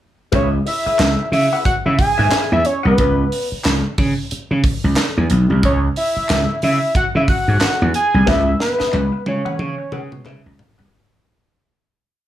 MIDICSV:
0, 0, Header, 1, 7, 480
1, 0, Start_track
1, 0, Key_signature, 4, "minor"
1, 0, Tempo, 662252
1, 236, Time_signature, 4, 2, 24, 8
1, 8898, End_track
2, 0, Start_track
2, 0, Title_t, "Analog synth lead"
2, 0, Program_c, 0, 81
2, 253, Note_on_c, 0, 73, 84
2, 355, Note_off_c, 0, 73, 0
2, 487, Note_on_c, 0, 76, 95
2, 935, Note_off_c, 0, 76, 0
2, 966, Note_on_c, 0, 76, 93
2, 1186, Note_off_c, 0, 76, 0
2, 1198, Note_on_c, 0, 78, 109
2, 1263, Note_off_c, 0, 78, 0
2, 1345, Note_on_c, 0, 76, 96
2, 1435, Note_on_c, 0, 80, 119
2, 1446, Note_off_c, 0, 76, 0
2, 1822, Note_off_c, 0, 80, 0
2, 1832, Note_on_c, 0, 76, 102
2, 1926, Note_on_c, 0, 73, 94
2, 1936, Note_off_c, 0, 76, 0
2, 2067, Note_off_c, 0, 73, 0
2, 2080, Note_on_c, 0, 71, 90
2, 2524, Note_off_c, 0, 71, 0
2, 4096, Note_on_c, 0, 73, 90
2, 4197, Note_off_c, 0, 73, 0
2, 4328, Note_on_c, 0, 76, 92
2, 4775, Note_off_c, 0, 76, 0
2, 4813, Note_on_c, 0, 76, 98
2, 5030, Note_off_c, 0, 76, 0
2, 5048, Note_on_c, 0, 78, 108
2, 5111, Note_off_c, 0, 78, 0
2, 5192, Note_on_c, 0, 76, 97
2, 5233, Note_off_c, 0, 76, 0
2, 5284, Note_on_c, 0, 78, 111
2, 5732, Note_off_c, 0, 78, 0
2, 5764, Note_on_c, 0, 80, 107
2, 6000, Note_on_c, 0, 76, 107
2, 6011, Note_off_c, 0, 80, 0
2, 6239, Note_off_c, 0, 76, 0
2, 6245, Note_on_c, 0, 71, 97
2, 6692, Note_off_c, 0, 71, 0
2, 6729, Note_on_c, 0, 73, 95
2, 7654, Note_off_c, 0, 73, 0
2, 8898, End_track
3, 0, Start_track
3, 0, Title_t, "Hollow-body jazz guitar"
3, 0, Program_c, 1, 26
3, 232, Note_on_c, 1, 68, 81
3, 235, Note_on_c, 1, 71, 85
3, 239, Note_on_c, 1, 76, 108
3, 397, Note_off_c, 1, 68, 0
3, 399, Note_off_c, 1, 71, 0
3, 400, Note_off_c, 1, 76, 0
3, 627, Note_on_c, 1, 76, 63
3, 630, Note_on_c, 1, 71, 59
3, 632, Note_on_c, 1, 68, 48
3, 713, Note_off_c, 1, 68, 0
3, 714, Note_off_c, 1, 71, 0
3, 714, Note_off_c, 1, 76, 0
3, 1107, Note_on_c, 1, 78, 79
3, 1112, Note_on_c, 1, 71, 64
3, 1114, Note_on_c, 1, 68, 60
3, 1189, Note_off_c, 1, 68, 0
3, 1192, Note_off_c, 1, 71, 0
3, 1201, Note_off_c, 1, 78, 0
3, 1578, Note_on_c, 1, 76, 83
3, 1586, Note_on_c, 1, 71, 84
3, 1587, Note_on_c, 1, 68, 68
3, 1666, Note_off_c, 1, 68, 0
3, 1671, Note_off_c, 1, 71, 0
3, 1673, Note_off_c, 1, 76, 0
3, 1675, Note_on_c, 1, 68, 90
3, 1680, Note_on_c, 1, 71, 100
3, 1682, Note_on_c, 1, 76, 99
3, 1840, Note_off_c, 1, 68, 0
3, 1843, Note_off_c, 1, 71, 0
3, 1844, Note_off_c, 1, 76, 0
3, 2053, Note_on_c, 1, 78, 70
3, 2057, Note_on_c, 1, 71, 61
3, 2064, Note_on_c, 1, 68, 62
3, 2149, Note_off_c, 1, 78, 0
3, 2151, Note_off_c, 1, 71, 0
3, 2154, Note_off_c, 1, 68, 0
3, 5991, Note_on_c, 1, 68, 76
3, 5994, Note_on_c, 1, 71, 86
3, 6001, Note_on_c, 1, 76, 90
3, 6157, Note_off_c, 1, 68, 0
3, 6158, Note_off_c, 1, 71, 0
3, 6162, Note_off_c, 1, 76, 0
3, 6368, Note_on_c, 1, 76, 64
3, 6376, Note_on_c, 1, 71, 57
3, 6379, Note_on_c, 1, 68, 51
3, 6459, Note_off_c, 1, 68, 0
3, 6463, Note_off_c, 1, 71, 0
3, 6464, Note_off_c, 1, 76, 0
3, 6852, Note_on_c, 1, 78, 76
3, 6859, Note_on_c, 1, 68, 65
3, 6859, Note_on_c, 1, 71, 61
3, 6944, Note_off_c, 1, 71, 0
3, 6945, Note_off_c, 1, 68, 0
3, 6955, Note_off_c, 1, 78, 0
3, 7193, Note_on_c, 1, 68, 99
3, 7196, Note_on_c, 1, 71, 86
3, 7201, Note_on_c, 1, 78, 102
3, 7336, Note_off_c, 1, 78, 0
3, 7339, Note_off_c, 1, 71, 0
3, 7357, Note_off_c, 1, 68, 0
3, 7433, Note_on_c, 1, 68, 88
3, 7440, Note_on_c, 1, 71, 92
3, 7440, Note_on_c, 1, 76, 85
3, 7597, Note_off_c, 1, 68, 0
3, 7601, Note_off_c, 1, 71, 0
3, 7601, Note_off_c, 1, 76, 0
3, 7814, Note_on_c, 1, 78, 68
3, 7817, Note_on_c, 1, 71, 69
3, 7823, Note_on_c, 1, 68, 57
3, 7907, Note_off_c, 1, 78, 0
3, 7909, Note_off_c, 1, 71, 0
3, 7912, Note_off_c, 1, 68, 0
3, 8898, End_track
4, 0, Start_track
4, 0, Title_t, "Slap bass"
4, 0, Program_c, 2, 36
4, 239, Note_on_c, 2, 37, 109
4, 421, Note_off_c, 2, 37, 0
4, 719, Note_on_c, 2, 37, 91
4, 828, Note_off_c, 2, 37, 0
4, 955, Note_on_c, 2, 49, 99
4, 1066, Note_off_c, 2, 49, 0
4, 1346, Note_on_c, 2, 49, 94
4, 1418, Note_off_c, 2, 49, 0
4, 1586, Note_on_c, 2, 44, 86
4, 1658, Note_off_c, 2, 44, 0
4, 1825, Note_on_c, 2, 40, 84
4, 1898, Note_off_c, 2, 40, 0
4, 2066, Note_on_c, 2, 36, 94
4, 2139, Note_off_c, 2, 36, 0
4, 2163, Note_on_c, 2, 37, 94
4, 2345, Note_off_c, 2, 37, 0
4, 2646, Note_on_c, 2, 37, 96
4, 2754, Note_off_c, 2, 37, 0
4, 2887, Note_on_c, 2, 49, 82
4, 2994, Note_off_c, 2, 49, 0
4, 3267, Note_on_c, 2, 49, 88
4, 3340, Note_off_c, 2, 49, 0
4, 3508, Note_on_c, 2, 37, 94
4, 3580, Note_off_c, 2, 37, 0
4, 3750, Note_on_c, 2, 40, 86
4, 3821, Note_off_c, 2, 40, 0
4, 3843, Note_on_c, 2, 35, 78
4, 3952, Note_off_c, 2, 35, 0
4, 3986, Note_on_c, 2, 36, 107
4, 4082, Note_off_c, 2, 36, 0
4, 4082, Note_on_c, 2, 37, 97
4, 4263, Note_off_c, 2, 37, 0
4, 4565, Note_on_c, 2, 37, 92
4, 4672, Note_off_c, 2, 37, 0
4, 4805, Note_on_c, 2, 49, 97
4, 4912, Note_off_c, 2, 49, 0
4, 5183, Note_on_c, 2, 49, 105
4, 5256, Note_off_c, 2, 49, 0
4, 5420, Note_on_c, 2, 44, 85
4, 5494, Note_off_c, 2, 44, 0
4, 5666, Note_on_c, 2, 40, 100
4, 5738, Note_off_c, 2, 40, 0
4, 5901, Note_on_c, 2, 36, 92
4, 5975, Note_off_c, 2, 36, 0
4, 5995, Note_on_c, 2, 37, 107
4, 6178, Note_off_c, 2, 37, 0
4, 6476, Note_on_c, 2, 37, 100
4, 6586, Note_off_c, 2, 37, 0
4, 6715, Note_on_c, 2, 49, 94
4, 6825, Note_off_c, 2, 49, 0
4, 6951, Note_on_c, 2, 49, 105
4, 7063, Note_off_c, 2, 49, 0
4, 7191, Note_on_c, 2, 49, 81
4, 7337, Note_off_c, 2, 49, 0
4, 7337, Note_on_c, 2, 47, 89
4, 7436, Note_off_c, 2, 47, 0
4, 7436, Note_on_c, 2, 49, 91
4, 7546, Note_off_c, 2, 49, 0
4, 7581, Note_on_c, 2, 37, 91
4, 7654, Note_off_c, 2, 37, 0
4, 7816, Note_on_c, 2, 36, 94
4, 7891, Note_off_c, 2, 36, 0
4, 8898, End_track
5, 0, Start_track
5, 0, Title_t, "Muted hollow-body jazz guitar strokes"
5, 476, Note_on_c, 9, 29, 37
5, 548, Note_off_c, 9, 29, 0
5, 722, Note_on_c, 9, 29, 40
5, 794, Note_off_c, 9, 29, 0
5, 867, Note_on_c, 9, 29, 45
5, 940, Note_off_c, 9, 29, 0
5, 1198, Note_on_c, 9, 29, 35
5, 1271, Note_off_c, 9, 29, 0
5, 1352, Note_on_c, 9, 29, 44
5, 1424, Note_off_c, 9, 29, 0
5, 1915, Note_on_c, 9, 29, 40
5, 1987, Note_off_c, 9, 29, 0
5, 6231, Note_on_c, 9, 29, 36
5, 6304, Note_off_c, 9, 29, 0
5, 6468, Note_on_c, 9, 29, 44
5, 6541, Note_off_c, 9, 29, 0
5, 6612, Note_on_c, 9, 29, 47
5, 6684, Note_off_c, 9, 29, 0
5, 6953, Note_on_c, 9, 29, 36
5, 7025, Note_off_c, 9, 29, 0
5, 7091, Note_on_c, 9, 29, 37
5, 7164, Note_off_c, 9, 29, 0
5, 7339, Note_on_c, 9, 29, 41
5, 7412, Note_off_c, 9, 29, 0
5, 7674, Note_on_c, 9, 29, 39
5, 7747, Note_off_c, 9, 29, 0
5, 8898, End_track
6, 0, Start_track
6, 0, Title_t, "Muted slap bass strokes"
6, 626, Note_on_c, 9, 29, 41
6, 698, Note_off_c, 9, 29, 0
6, 1198, Note_on_c, 9, 29, 48
6, 1271, Note_off_c, 9, 29, 0
6, 1681, Note_on_c, 9, 29, 46
6, 1753, Note_off_c, 9, 29, 0
6, 2551, Note_on_c, 9, 29, 45
6, 2623, Note_off_c, 9, 29, 0
6, 3131, Note_on_c, 9, 29, 46
6, 3204, Note_off_c, 9, 29, 0
6, 4468, Note_on_c, 9, 29, 49
6, 4541, Note_off_c, 9, 29, 0
6, 5039, Note_on_c, 9, 29, 45
6, 5111, Note_off_c, 9, 29, 0
6, 5521, Note_on_c, 9, 29, 44
6, 5593, Note_off_c, 9, 29, 0
6, 6383, Note_on_c, 9, 29, 47
6, 6455, Note_off_c, 9, 29, 0
6, 8898, End_track
7, 0, Start_track
7, 0, Title_t, "Drums"
7, 235, Note_on_c, 9, 42, 72
7, 237, Note_on_c, 9, 36, 96
7, 307, Note_off_c, 9, 42, 0
7, 309, Note_off_c, 9, 36, 0
7, 482, Note_on_c, 9, 46, 85
7, 555, Note_off_c, 9, 46, 0
7, 718, Note_on_c, 9, 39, 82
7, 724, Note_on_c, 9, 42, 91
7, 725, Note_off_c, 9, 39, 0
7, 725, Note_on_c, 9, 38, 115
7, 725, Note_on_c, 9, 39, 99
7, 796, Note_off_c, 9, 42, 0
7, 798, Note_off_c, 9, 38, 0
7, 798, Note_off_c, 9, 39, 0
7, 964, Note_on_c, 9, 46, 79
7, 1036, Note_off_c, 9, 46, 0
7, 1198, Note_on_c, 9, 36, 81
7, 1204, Note_on_c, 9, 42, 96
7, 1271, Note_off_c, 9, 36, 0
7, 1276, Note_off_c, 9, 42, 0
7, 1440, Note_on_c, 9, 36, 88
7, 1444, Note_on_c, 9, 46, 69
7, 1512, Note_off_c, 9, 36, 0
7, 1517, Note_off_c, 9, 46, 0
7, 1679, Note_on_c, 9, 38, 107
7, 1679, Note_on_c, 9, 39, 104
7, 1679, Note_on_c, 9, 42, 84
7, 1682, Note_off_c, 9, 39, 0
7, 1682, Note_on_c, 9, 39, 85
7, 1751, Note_off_c, 9, 38, 0
7, 1752, Note_off_c, 9, 42, 0
7, 1755, Note_off_c, 9, 39, 0
7, 1919, Note_on_c, 9, 42, 76
7, 1991, Note_off_c, 9, 42, 0
7, 2160, Note_on_c, 9, 42, 69
7, 2163, Note_on_c, 9, 36, 106
7, 2232, Note_off_c, 9, 42, 0
7, 2235, Note_off_c, 9, 36, 0
7, 2407, Note_on_c, 9, 46, 84
7, 2480, Note_off_c, 9, 46, 0
7, 2641, Note_on_c, 9, 39, 76
7, 2646, Note_on_c, 9, 42, 88
7, 2647, Note_off_c, 9, 39, 0
7, 2647, Note_on_c, 9, 38, 119
7, 2647, Note_on_c, 9, 39, 101
7, 2718, Note_off_c, 9, 42, 0
7, 2720, Note_off_c, 9, 38, 0
7, 2720, Note_off_c, 9, 39, 0
7, 2884, Note_on_c, 9, 46, 75
7, 2886, Note_on_c, 9, 36, 101
7, 2957, Note_off_c, 9, 46, 0
7, 2958, Note_off_c, 9, 36, 0
7, 3125, Note_on_c, 9, 42, 102
7, 3197, Note_off_c, 9, 42, 0
7, 3361, Note_on_c, 9, 36, 99
7, 3364, Note_on_c, 9, 46, 69
7, 3433, Note_off_c, 9, 36, 0
7, 3436, Note_off_c, 9, 46, 0
7, 3598, Note_on_c, 9, 38, 127
7, 3598, Note_on_c, 9, 39, 104
7, 3598, Note_on_c, 9, 42, 88
7, 3608, Note_off_c, 9, 39, 0
7, 3608, Note_on_c, 9, 39, 89
7, 3670, Note_off_c, 9, 38, 0
7, 3670, Note_off_c, 9, 42, 0
7, 3680, Note_off_c, 9, 39, 0
7, 3840, Note_on_c, 9, 42, 89
7, 3912, Note_off_c, 9, 42, 0
7, 4082, Note_on_c, 9, 36, 107
7, 4082, Note_on_c, 9, 42, 68
7, 4154, Note_off_c, 9, 42, 0
7, 4155, Note_off_c, 9, 36, 0
7, 4322, Note_on_c, 9, 46, 90
7, 4395, Note_off_c, 9, 46, 0
7, 4559, Note_on_c, 9, 39, 85
7, 4565, Note_on_c, 9, 42, 88
7, 4567, Note_off_c, 9, 39, 0
7, 4567, Note_on_c, 9, 38, 127
7, 4567, Note_on_c, 9, 39, 97
7, 4638, Note_off_c, 9, 42, 0
7, 4639, Note_off_c, 9, 38, 0
7, 4639, Note_off_c, 9, 39, 0
7, 4798, Note_on_c, 9, 46, 77
7, 4871, Note_off_c, 9, 46, 0
7, 5037, Note_on_c, 9, 36, 85
7, 5042, Note_on_c, 9, 42, 97
7, 5109, Note_off_c, 9, 36, 0
7, 5114, Note_off_c, 9, 42, 0
7, 5277, Note_on_c, 9, 36, 87
7, 5282, Note_on_c, 9, 46, 62
7, 5349, Note_off_c, 9, 36, 0
7, 5355, Note_off_c, 9, 46, 0
7, 5514, Note_on_c, 9, 39, 83
7, 5517, Note_off_c, 9, 39, 0
7, 5517, Note_on_c, 9, 38, 124
7, 5517, Note_on_c, 9, 39, 89
7, 5517, Note_on_c, 9, 42, 82
7, 5589, Note_off_c, 9, 38, 0
7, 5589, Note_off_c, 9, 39, 0
7, 5589, Note_off_c, 9, 42, 0
7, 5757, Note_on_c, 9, 42, 88
7, 5829, Note_off_c, 9, 42, 0
7, 5995, Note_on_c, 9, 38, 56
7, 5996, Note_on_c, 9, 36, 97
7, 6068, Note_off_c, 9, 38, 0
7, 6069, Note_off_c, 9, 36, 0
7, 6236, Note_on_c, 9, 38, 73
7, 6309, Note_off_c, 9, 38, 0
7, 6377, Note_on_c, 9, 38, 64
7, 6450, Note_off_c, 9, 38, 0
7, 6470, Note_on_c, 9, 39, 79
7, 6474, Note_on_c, 9, 48, 75
7, 6542, Note_off_c, 9, 39, 0
7, 6547, Note_off_c, 9, 48, 0
7, 6714, Note_on_c, 9, 48, 70
7, 6786, Note_off_c, 9, 48, 0
7, 6856, Note_on_c, 9, 47, 68
7, 6929, Note_off_c, 9, 47, 0
7, 6952, Note_on_c, 9, 47, 80
7, 7025, Note_off_c, 9, 47, 0
7, 7190, Note_on_c, 9, 45, 87
7, 7263, Note_off_c, 9, 45, 0
7, 7336, Note_on_c, 9, 45, 82
7, 7408, Note_off_c, 9, 45, 0
7, 7434, Note_on_c, 9, 39, 78
7, 7434, Note_on_c, 9, 45, 92
7, 7507, Note_off_c, 9, 39, 0
7, 7507, Note_off_c, 9, 45, 0
7, 7677, Note_on_c, 9, 43, 107
7, 7750, Note_off_c, 9, 43, 0
7, 7818, Note_on_c, 9, 43, 86
7, 7891, Note_off_c, 9, 43, 0
7, 8898, End_track
0, 0, End_of_file